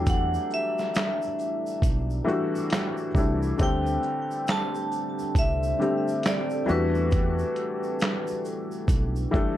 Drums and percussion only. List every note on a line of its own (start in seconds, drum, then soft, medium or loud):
0.06 kick loud
0.06 closed hi-hat medium
0.06 shaker medium
0.34 shaker soft
0.50 shaker soft
0.78 snare soft
0.78 shaker soft
0.95 snare loud
0.95 clap medium
0.95 closed hi-hat medium
0.95 shaker medium
1.22 shaker medium
1.39 shaker medium
1.67 shaker soft
1.82 kick medium
1.82 closed hi-hat medium
1.82 shaker medium
2.11 shaker soft
2.28 shaker soft
2.55 shaker medium
2.70 snare loud
2.70 clap medium
2.70 closed hi-hat medium
2.70 shaker medium
2.98 shaker soft
3.15 kick loud
3.15 shaker soft
3.43 shaker soft
3.59 kick loud
3.59 closed hi-hat medium
3.59 shaker medium
3.87 shaker soft
4.03 shaker medium
4.31 shaker soft
4.47 snare loud
4.47 clap medium
4.47 closed hi-hat medium
4.47 shaker medium
4.75 shaker medium
4.92 shaker medium
5.19 shaker soft
5.35 kick medium
5.35 closed hi-hat medium
5.35 shaker medium
5.63 shaker soft
5.82 shaker soft
6.08 shaker medium
6.23 snare loud
6.23 clap medium
6.23 closed hi-hat medium
6.23 shaker medium
6.50 shaker soft
6.68 shaker soft
6.95 shaker soft
7.11 kick loud
7.11 closed hi-hat medium
7.11 shaker medium
7.39 shaker soft
7.56 closed hi-hat soft
7.56 shaker soft
7.84 shaker soft
8.00 snare loud
8.00 clap loud
8.00 closed hi-hat medium
8.00 shaker medium
8.27 shaker medium
8.45 shaker soft
8.45 shaker medium
8.72 shaker medium
8.88 kick loud
8.88 closed hi-hat medium
8.88 shaker medium
9.16 shaker soft
9.34 kick medium
9.34 shaker soft